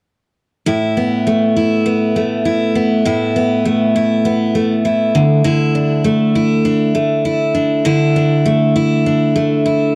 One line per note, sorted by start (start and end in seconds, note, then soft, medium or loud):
0.67 3.04 A2 medium
0.67 1.56 E4 soft
0.97 1.85 B3 soft
1.27 2.16 A3 soft
1.57 2.45 E4 soft
1.86 2.74 B3 soft
2.16 3.65 A3 soft
2.45 3.06 E4 soft
2.75 3.35 B3 soft
3.05 5.14 A2 medium
3.05 3.95 E4 medium
3.36 4.24 B3 soft
3.65 4.54 A3 soft
3.95 4.84 E4 soft
4.25 5.22 B3 soft
4.55 6.04 A3 soft
4.85 5.45 E4 medium
5.15 5.43 D3 medium
5.44 7.84 D3 medium
5.44 6.35 E4 medium
5.75 6.64 D4 soft
6.04 6.95 A3 soft
6.35 7.25 E4 soft
6.65 7.54 D4 soft
6.95 8.45 A3 soft
7.25 7.85 E4 soft
7.55 8.15 D4 soft
7.85 9.95 D3 medium
7.85 8.75 E4 medium
8.16 9.05 D4 soft
8.46 9.35 A3 soft
8.76 9.65 E4 soft
9.06 9.95 D4 soft
9.36 9.95 A3 soft
9.66 9.95 E4 soft